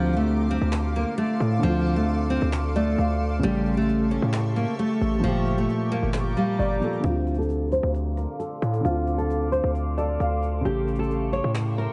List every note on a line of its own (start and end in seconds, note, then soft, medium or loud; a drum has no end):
0.00 0.58 D2 loud
0.00 1.57 D3 medium
0.00 0.14 F3 loud
0.00 1.59 C4 medium
0.00 1.62 F4 medium
0.00 3.40 A4 medium
0.00 3.39 F5 medium
0.00 3.40 C6 medium
0.00 3.39 D6 medium
0.05 cajon slap soft
0.13 0.48 A3 medium
0.13 cajon slap soft
0.20 cajon slap soft
0.28 cajon slap soft
0.50 0.68 C4 medium
0.50 cajon slap soft
0.61 1.05 D2 loud
0.72 cajon slap medium
0.72 cajon slap loud
0.95 1.13 A#3 medium
0.95 cajon slap soft
1.18 1.60 A3 medium
1.18 cajon slap soft
1.40 1.62 A2 loud
1.40 cajon slap soft
1.52 cajon slap soft
1.59 3.38 D3 medium
1.63 2.39 D2 loud
1.63 1.95 F3 medium
1.63 3.40 C4 medium
1.63 cajon slap soft
1.67 3.42 F4 medium
1.86 cajon slap soft
1.96 2.28 A3 medium
1.96 cajon slap soft
2.08 cajon slap soft
2.30 2.48 C4 medium
2.30 cajon slap soft
2.42 2.96 D2 loud
2.52 cajon slap medium
2.52 cajon slap loud
2.76 3.39 A3 medium
2.76 2.97 D5 medium
2.76 cajon slap soft
2.98 3.42 D2 loud
2.98 3.40 F5 medium
2.98 cajon slap soft
3.39 5.18 C#3 medium
3.43 4.19 A1 loud
3.43 3.75 G3 loud
3.43 5.20 A3 medium
3.43 7.01 G4 medium
3.43 5.22 E5 medium
3.43 5.22 A5 medium
3.43 5.22 C#6 medium
3.43 cajon slap soft
3.48 5.22 G4 medium
3.66 cajon slap soft
3.74 4.09 A3 medium
3.74 cajon slap soft
3.81 cajon slap soft
3.89 cajon slap soft
4.11 4.29 C#4 medium
4.11 cajon slap soft
4.22 4.66 A2 loud
4.33 cajon slap loud
4.56 4.74 A#3 medium
4.56 cajon slap soft
4.79 5.21 A3 medium
4.79 cajon slap soft
5.01 5.23 A1 loud
5.01 cajon slap soft
5.13 cajon slap soft
5.20 6.76 F3 medium
5.24 5.67 G1 loud
5.24 6.79 A#2 medium
5.24 5.56 F3 medium
5.24 7.02 F5 medium
5.24 7.03 A#5 medium
5.24 7.03 D6 medium
5.24 cajon slap soft
5.28 6.81 G4 medium
5.46 cajon slap soft
5.58 5.90 A3 medium
5.58 cajon slap soft
5.69 cajon slap soft
5.91 6.09 A#3 medium
5.91 cajon slap soft
6.03 6.35 G1 loud
6.13 cajon slap loud
6.20 cajon slap soft
6.31 cajon slap soft
6.37 7.00 G3 medium
6.37 6.58 F5 medium
6.37 cajon slap soft
6.59 6.81 G1 loud
6.59 7.01 D5 medium
6.59 cajon slap soft
6.80 7.03 F3 medium
6.80 7.04 A#3 medium
6.80 cajon slap soft
6.84 7.05 A4 medium
6.93 cajon slap soft
7.00 8.79 D3 medium
7.00 7.36 F4 loud
7.04 7.80 D2 loud
7.04 8.81 C4 medium
7.04 11.93 A4 medium
7.04 10.62 F5 medium
7.04 10.62 C6 medium
7.04 10.62 D6 medium
7.04 cajon slap soft
7.09 8.83 F4 medium
7.27 cajon slap soft
7.34 cajon slap soft
7.38 7.70 A4 medium
7.38 cajon slap soft
7.50 cajon slap soft
7.72 7.90 C5 medium
7.72 cajon slap soft
7.83 8.27 D2 loud
7.95 cajon slap soft
8.17 8.35 A#4 medium
8.17 cajon slap soft
8.40 8.82 A4 medium
8.40 cajon slap soft
8.62 8.84 A2 loud
8.62 cajon slap soft
8.74 cajon slap soft
8.81 10.59 D3 medium
8.85 9.61 D2 loud
8.85 10.62 C4 medium
8.85 9.17 F4 medium
8.85 cajon slap soft
8.89 10.64 F4 medium
9.07 cajon slap soft
9.18 9.50 A4 medium
9.18 cajon slap soft
9.30 cajon slap soft
9.52 9.70 C5 medium
9.52 cajon slap soft
9.64 10.18 D2 loud
9.75 cajon slap soft
9.98 10.61 A4 medium
9.98 10.19 D5 medium
9.98 cajon slap soft
10.20 10.63 D2 loud
10.20 10.62 F5 medium
10.20 cajon slap soft
10.43 cajon slap soft
10.61 11.93 C#3 medium
10.65 11.41 A1 loud
10.65 11.93 A3 medium
10.65 10.97 G4 loud
10.65 11.93 E5 medium
10.65 11.93 G5 medium
10.65 11.93 C#6 medium
10.65 cajon slap soft
10.69 11.93 G4 medium
10.88 cajon slap soft
10.95 11.31 A4 medium
10.95 cajon slap soft
11.03 cajon slap soft
11.11 cajon slap soft
11.33 11.51 C#5 medium
11.33 cajon slap soft
11.44 11.87 A2 loud
11.55 cajon slap medium
11.55 cajon slap loud
11.78 11.93 A#4 medium
11.78 cajon slap soft